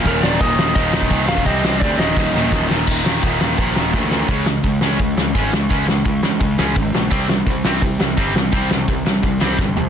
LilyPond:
<<
  \new Staff \with { instrumentName = "Lead electric guitar" } { \time 4/4 \key ees \major \tempo 4 = 170 bes'8 d''8 ees''4 ees''4. f''8 | ees''4 d''8 ees''2 r8 | r1 | \key des \lydian r1 |
r1 | r1 | r1 | }
  \new Staff \with { instrumentName = "Distorted electric guitar" } { \clef bass \time 4/4 \key ees \major <ees, bes, ees>8 <ees, bes, ees>8 <ees, bes, ees>8 <ees, bes, ees>8 <ees, bes, ees>8 <ees, bes, ees>8 <ees, bes, ees>8 <ees, bes, ees>8 | <c g c'>8 <c g c'>8 <c g c'>8 <ees, bes, ees>8 <ees, bes, ees>8 <ees, bes, ees>8 <ees, bes, ees>8 <ees, bes, ees>8 | <ees, bes, ees>8 <ees, bes, ees>8 <ees, bes, ees>8 <ees, bes, ees>8 <ees, bes, ees>8 <ees, bes, ees>8 <ees, bes, ees>8 <ees, bes, ees>8 | \key des \lydian <des aes des'>8 <des aes>8 <des aes>8 <des aes des'>8 <des aes>8 <des aes>8 <des aes des'>8 <des aes>8 |
<des aes des'>8 <des aes>8 <des aes>8 <des aes>8 <des aes>8 <des aes des'>8 <des aes>8 <des aes>8 | <c g c'>8 <c g>8 <c g>8 <c g c'>8 <c g>8 <c g>8 <c g c'>8 <c g>8 | <c g c'>8 <c g>8 <c g>8 <c g>8 <c g>8 <c g c'>8 <c g>8 <c g>8 | }
  \new Staff \with { instrumentName = "Picked electric bass" } { \clef bass \time 4/4 \key ees \major ees,,8 ees,,8 ees,,8 ees,,8 ees,,8 ees,,8 c,8 ees,,8 | c,8 c,8 d,8 ees,,8 ees,,8 ees,,8 ees,,8 ees,,8 | ees,,8 ees,,8 ees,,8 ees,,8 bes,,8 ees,,8 d,4 | \key des \lydian des,4 des,8 des,8 des,8 des,8 aes,,8 des,8 |
des,4 des,8 des,8 des,8 des,8 aes,,8 bes,,8 | c,4 c,8 c,8 c,8 c,8 g,,8 c,8 | c,4 c,8 c,8 c,8 c,8 g,,8 c,8 | }
  \new DrumStaff \with { instrumentName = "Drums" } \drummode { \time 4/4 <cymc bd>8 sn8 <cymc bd>8 sn8 <cymc bd>8 sn16 bd16 <cymc bd>8 sn16 bd16 | <cymc bd>8 sn8 <cymc bd>8 sn8 <bd sn>8 sn8 <bd sn>8 sn8 | <cymc bd>8 sn8 <bd cymr>8 sn8 <bd cymr>8 sn8 <bd sn>8 sn8 | <hho bd>8 sn8 <hho bd>8 sn8 <hho bd>8 sn8 <hho bd>8 sn8 |
<hho bd>8 sn8 <hho bd>8 sn8 <hho bd>8 sn8 <hho bd>8 sn8 | <hho bd>8 sn8 <hho bd>8 sn8 <hho bd>8 sn8 <hho bd>8 sn8 | <hho bd>8 sn8 <hho bd>8 sn8 <hho bd>8 sn8 <bd sn>8 tomfh8 | }
>>